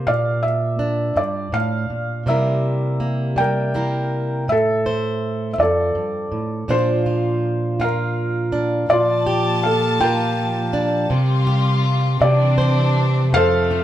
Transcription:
Already playing: A#3
0.07 A#2 D5 F5
0.43 E5
0.79 D4
1.16 G2 D5
1.52 A2 F5
1.90 A#2
2.26 C3 G3 A#3 E4 A#4 E5
3.00 A#3
3.36 G3 A#4 G5
3.75 A#3 E4 A#4
4.48 A2 E5
4.52 A4
4.86 C5
5.53 E5
5.58 F2 D5
5.63 A4
5.95 G2
6.32 A2
6.68 A#2 F3 D4 F4 C5
6.74 F4
7.06 F4
7.80 F4 F5
7.84 A#4
8.52 D4
8.89 A#2 F3 D5 A5
8.93 F4
9.26 G4
9.63 A4 F5
10.01 F4 A#4 G5
10.73 D4
11.10 C3 G3 F4
11.47 G4
12.21 C3 E3 C4 D4 G4 D5
12.58 C5
13.33 F2 C3 A3 A4 C5 F5
13.71 F4

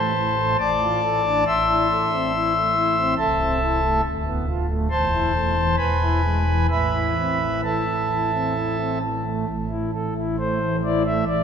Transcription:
Already playing: A1 A2 A3 C5 A5 C6
0.15 E3
0.36 A3
0.59 A1 A2 D5 A5 D6
0.81 F4
1.03 A4
1.25 D4
1.47 A1 A2 E5 C6 E6
1.68 E4
1.90 A4
2.12 C4
2.34 E4
2.55 A3
2.76 E4
2.97 C4
3.18 C1 C2 A4 E5 A5
3.39 C4
3.60 E4
3.82 A3
4.04 D1 D2
4.26 B3
4.47 F4
4.69 A3
4.91 E1 E2 C5 A5 C6
5.12 E4
5.34 A3
5.56 E3
5.77 E1 E2 B4 G#5 B5
6.01 E4
6.23 G#3
6.46 E3
6.70 A1 A2 B4 E5 B5
6.93 E4
7.17 C4
7.41 E3
7.64 E4 A4 E5 A5
7.87 E3
8.10 E4
8.32 C4
8.56 E4
8.78 C4
9.02 E3
9.25 A3
9.47 A1 A2
9.70 E4
9.94 A4
10.16 E4
10.39 A3 C5
10.61 E3
10.84 E4 D5
11.06 A3 E5
11.27 A1 A2 D5

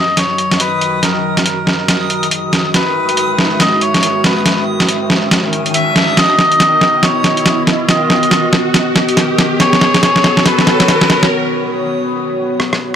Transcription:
Already playing: D#3 F#3 F#4 D#5 D#6, riser
0.17 C#5, snare, closed hi-hat
0.38 closed hi-hat
0.52 snare, closed hi-hat
0.60 B4, closed hi-hat
0.81 closed hi-hat
1.03 A#4, snare, closed hi-hat
1.37 snare, closed hi-hat
1.46 A#4, closed hi-hat
1.67 snare
1.88 snare, closed hi-hat
2.10 closed hi-hat
2.23 closed hi-hat
2.31 closed hi-hat
2.53 snare, closed hi-hat
2.74 G#3 B4 E5, snare, closed hi-hat
3.09 closed hi-hat
3.17 closed hi-hat
3.39 snare
3.60 D#5, snare, closed hi-hat
3.81 C#5, closed hi-hat
3.94 snare, closed hi-hat
4.03 closed hi-hat
4.24 B4, snare, closed hi-hat
4.46 snare, closed hi-hat
4.80 snare, closed hi-hat
4.89 closed hi-hat
5.10 snare
5.31 snare, closed hi-hat
5.53 closed hi-hat
5.66 closed hi-hat
5.74 E5, closed hi-hat
5.96 snare, closed hi-hat
6.17 B3 D#5, snare, closed hi-hat
6.39 snare
6.52 closed hi-hat
6.60 snare, closed hi-hat
6.81 snare
7.03 C#5, snare, closed hi-hat
7.24 snare, closed hi-hat
7.37 closed hi-hat
7.46 snare, closed hi-hat
7.67 snare, closed hi-hat
7.89 D#5, snare, closed hi-hat
8.10 snare
8.23 closed hi-hat
8.31 snare, closed hi-hat
8.53 snare
8.74 snare, closed hi-hat
8.96 snare, closed hi-hat
9.09 closed hi-hat
9.17 snare, closed hi-hat
9.38 snare, closed hi-hat
9.60 F#4 C#5, snare, closed hi-hat
9.73 snare
9.81 snare
9.94 snare, closed hi-hat
10.03 C#5, snare, closed hi-hat
10.16 snare
10.24 snare
10.37 snare
10.46 B4, snare, closed hi-hat
10.59 snare
10.67 snare, closed hi-hat
10.80 snare, closed hi-hat
10.88 snare, closed hi-hat
11.01 snare
11.10 snare, closed hi-hat
11.23 snare
12.60 cross-stick
12.73 cross-stick

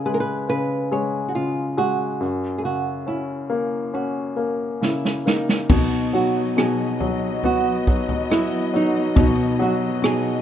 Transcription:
Already playing: C#3 G#3
0.06 G#3 B4
0.14 A#4
0.20 B4
0.49 C#3 B4
0.92 G#3 C#5
1.28 F#4
1.35 C#3 F4
1.77 G#3 F#4
2.20 F#2
2.58 G#4
2.63 C#3 F#4
3.07 C#4 E4
3.50 A#3
3.94 C#4 F#4
4.36 A#3
4.81 C#3 E4, snare
5.05 snare
5.26 A#3 D#4, snare
5.49 snare
5.69 B2 F#3 B3 D#4 F#4 D#5, kick, floor tom, crash
6.13 F#3 B3 D#4 F#4
6.57 B2 F#3 B3 D#4 F#4 G#4, cross-stick
7.00 F#3, floor tom
7.43 B3 F#4, floor tom
7.87 F#3 B3 D#4 F#4, kick
8.09 floor tom
8.30 F#3 B3 E4 F#4, cross-stick
8.73 F#3 B3 D#4 F#4
9.16 B2 F#3 B3 D#4 F#4, kick, floor tom
9.59 F#3 B3 D#4 F#4
10.02 B2 F#3 B3 D#4 F#4 G#4, cross-stick

